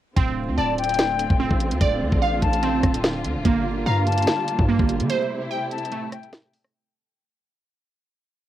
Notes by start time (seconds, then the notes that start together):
0.16 D1 D3 A3 C4 F4, kick, closed hi-hat
0.48 D2
0.57 D1 D5 A5
0.78 G5, closed hi-hat
0.84 closed hi-hat
0.89 closed hi-hat
0.94 closed hi-hat
0.99 snare, closed hi-hat
1.19 closed hi-hat
1.30 D1, kick
1.40 C4
1.51 A1, kick
1.60 closed hi-hat
1.71 D2, closed hi-hat
1.81 D1 D5, kick, closed hi-hat
2.01 D2
2.12 A1, kick
2.22 F5
2.42 A1 A5, kick, closed hi-hat
2.53 closed hi-hat
2.63 C4, closed hi-hat
2.84 D1, kick, cross-stick, closed hi-hat
2.94 closed hi-hat
3.04 snare
3.25 D2, closed hi-hat
3.35 D1
3.45 G1 G3 A#3, kick, closed hi-hat
3.86 G2 F5 A#5
4.07 A5, closed hi-hat
4.12 closed hi-hat
4.18 closed hi-hat
4.23 closed hi-hat
4.27 snare, closed hi-hat
4.48 closed hi-hat
4.59 G2, kick
4.69 A#3
4.79 G1, kick
4.89 closed hi-hat
5.00 D3, closed hi-hat
5.10 C3 A3 E4 C5, closed hi-hat
5.51 G5
5.71 A5, closed hi-hat
5.78 closed hi-hat
5.85 closed hi-hat
5.92 A3, closed hi-hat
6.12 G5, cross-stick, closed hi-hat
6.23 closed hi-hat
6.33 snare
6.53 open hi-hat
6.64 cross-stick